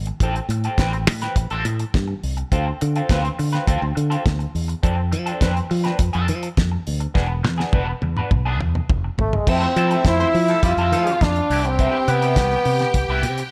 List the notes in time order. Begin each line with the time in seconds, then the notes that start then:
Already playing: G#1
0.06 muted clean electric guitar stroke, closed hi-hat
0.20 A1 C4 G4 A4, kick, closed hi-hat
0.36 muted clean electric guitar stroke, closed hi-hat
0.49 A2, muted clean electric guitar stroke, closed hi-hat
0.64 C4 G4 A4, closed hi-hat
0.78 A1 C4 G4 B4, kick, snare, closed hi-hat
0.93 muted clean electric guitar stroke, closed hi-hat
1.07 A2, muted clean electric guitar stroke, open hi-hat
1.21 C4 G4 B4, snare, closed hi-hat
1.36 A1, muted clean electric guitar stroke, kick, closed hi-hat
1.50 A1 C4 G4 A4, closed hi-hat
1.65 A2, muted clean electric guitar stroke, closed hi-hat
1.79 muted clean electric guitar stroke, closed hi-hat
1.94 G2, muted clean electric guitar stroke, kick, snare, closed hi-hat
2.08 muted clean electric guitar stroke
2.23 C2, open hi-hat
2.37 muted clean electric guitar stroke, closed hi-hat
2.52 D2 C4 F4 A4, kick, closed hi-hat
2.67 muted clean electric guitar stroke
2.81 D3, muted clean electric guitar stroke, closed hi-hat
2.96 C4 F4 A4, closed hi-hat
3.09 D2 C4 F4 B4, kick, snare, closed hi-hat
3.25 muted clean electric guitar stroke, closed hi-hat
3.39 D3, muted clean electric guitar stroke, open hi-hat
3.53 C4 F4 B4, snare, closed hi-hat
3.67 D2 C4 F4 A4, kick, closed hi-hat
3.82 D2, muted clean electric guitar stroke
3.95 D3, muted clean electric guitar stroke, closed hi-hat
4.10 C4 F4 A4, closed hi-hat
4.25 D2, muted clean electric guitar stroke, kick, snare, closed hi-hat
4.39 muted clean electric guitar stroke, closed hi-hat
4.55 E2, open hi-hat
4.68 muted clean electric guitar stroke, closed hi-hat
4.83 F2 C4 D4 A4, kick, closed hi-hat
4.97 muted clean electric guitar stroke
5.12 F3, muted clean electric guitar stroke, closed hi-hat
5.26 C4 D4 A4, closed hi-hat
5.40 F2 C4 D4 B4, kick, snare, closed hi-hat
5.56 muted clean electric guitar stroke, closed hi-hat
5.70 F3, muted clean electric guitar stroke, open hi-hat
5.84 C4 D4 B4, snare, closed hi-hat
5.99 F2, muted clean electric guitar stroke, kick, closed hi-hat
6.13 F2 C4 D4 A4, closed hi-hat
6.28 F3, muted clean electric guitar stroke, closed hi-hat
6.43 muted clean electric guitar stroke, closed hi-hat
6.57 F2, muted clean electric guitar stroke, kick, snare, closed hi-hat
6.72 muted clean electric guitar stroke
6.87 D2, open hi-hat
7.00 muted clean electric guitar stroke, closed hi-hat
7.14 E1 B3 D4 G#4, kick, snare
7.29 muted clean electric guitar stroke
7.43 E2, muted clean electric guitar stroke, snare
7.58 B3 D4 G#4, snare
7.73 E1 B3 D4 B4, kick, high tom
7.88 muted clean electric guitar stroke
8.02 E2, muted clean electric guitar stroke, high tom
8.17 B3 D4 B4, mid tom
8.31 B1, muted clean electric guitar stroke, kick, mid tom
8.45 B3 D4 G#4
8.60 E2, mid tom
8.75 muted clean electric guitar stroke, mid tom
8.89 F1, muted clean electric guitar stroke, kick, mid tom
9.04 muted clean electric guitar stroke
9.18 G#1 A3, floor tom
9.33 G#3, muted clean electric guitar stroke, floor tom
9.47 F2 C4 E4 A4 E5, kick, crash
9.61 A3 C4 F4 C5
9.76 F3 C4 E4 A4, closed hi-hat
9.90 F3 A3 C4 E4 A4, closed hi-hat
10.04 F2 A3 C4 E4 F4 C5, muted clean electric guitar stroke, kick, snare, closed hi-hat
10.19 A3 C4 F4 C5, muted clean electric guitar stroke, closed hi-hat
10.34 F3, open hi-hat
10.48 F3 A3 E4 A4, muted clean electric guitar stroke, closed hi-hat
10.63 F2 G3 E4 F4 G4, muted clean electric guitar stroke, kick, closed hi-hat
10.77 F2 C4 E4 A4, closed hi-hat
10.92 F3 A3 E4 F4 A4 F5, muted clean electric guitar stroke, closed hi-hat
11.07 muted clean electric guitar stroke, closed hi-hat
11.21 F2 D4, muted clean electric guitar stroke, kick, snare, closed hi-hat
11.36 muted clean electric guitar stroke, closed hi-hat
11.49 C2 B3 E4 G4 G5, open hi-hat
11.65 C4, muted clean electric guitar stroke, closed hi-hat
11.79 B3 E4 G4, kick, closed hi-hat
12.08 C3 B3 E4 G4, closed hi-hat
12.22 B3 E4 G4, closed hi-hat
12.36 C2, kick, snare, closed hi-hat
12.51 muted clean electric guitar stroke, closed hi-hat
12.65 C3, open hi-hat
12.79 muted clean electric guitar stroke, snare, closed hi-hat
12.94 C2, muted clean electric guitar stroke, kick, closed hi-hat
13.08 C2 B3 E4 G4
13.23 C3, muted clean electric guitar stroke, closed hi-hat
13.38 muted clean electric guitar stroke, closed hi-hat